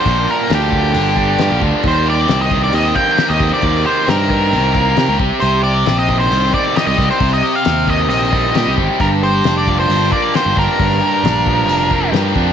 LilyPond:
<<
  \new Staff \with { instrumentName = "Lead electric guitar" } { \time 4/4 \key c \dorian \tempo 4 = 134 c''8 bes'8 g'2~ g'8 r8 | c''8 d''8. ees''8 d''16 ees''8 g''8. ees''8 d''16~ | d''8 c''8 bes'2~ bes'8 r8 | c''8 d''8. ees''8 c''8. d''8 ees''16 ees''8 c''16~ |
c''16 ees''8 f''8. ees''8 ees''4. r8 | bes'8 c''8. d''8 c''8. d''8 c''8 bes'8~ | bes'2. r4 | }
  \new Staff \with { instrumentName = "Distorted electric guitar" } { \time 4/4 \key c \dorian <bes, g d' f'>8 f'8 d'8 d8 d'8 g8 f'8 d'8 | ees8 g'8 c'8 ees8 c'8 bes8 g'8 c'8 | ees8 g'8 c'8 ees8 c'8 bes8 g'8 c8 | c8 g'8 c'8 ees8 c'8 g8 g'8 c'8 |
c8 g'8 c'8 ees8 c'8 g8 g'8 c'8 | g,8 g'8 d'8 f8 d'8 bes8 g'8 d'8 | g,8 g'8 d'8 f8 d'8 bes8 g'8 d'8 | }
  \new Staff \with { instrumentName = "Picked electric bass" } { \clef bass \time 4/4 \key c \dorian bes,,8 r8 d,4 g,,4 g,16 bes,,16 d,16 r16 | ees,4 c,4 ees,8 r8. ees,16 ees,16 r16 | ees,8 r8 g,4 c,4 c16 des,16 c,16 r16 | c,4 bes,,4 c,8 r8. c,16 c,16 r16 |
c,8 r8 ees,4 bes,,4 bes,16 c,16 aes,,16 r16 | g,,4 f,,4 g,,8 r8. g,,16 g,,16 r16 | g,,8 r8 bes,,4 f,,4 g,8 f,8 | }
  \new DrumStaff \with { instrumentName = "Drums" } \drummode { \time 4/4 <hho bd>4 <hho sn>8 bd8 hho8 bd8 <hho sn>8 bd8 | <hho bd>4 <hho sn>8 bd8 hho8 bd8 <hho sn>8 bd8 | <hho bd>4 <hho sn>8 bd8 hho8 bd8 <hho sn>8 bd8 | hho4 <hho sn>8 bd8 hho8 bd8 <hho sn>8 <bd sn>8 |
<hho bd>4 <hho sn>8 bd8 hho8 bd8 <hho sn>8 bd8 | <hho bd>4 <hho sn>8 bd8 hho8 bd8 <hho sn>8 bd8 | <hho bd>4 <hho sn>8 bd8 hho8 bd8 <hho sn>8 bd8 | }
>>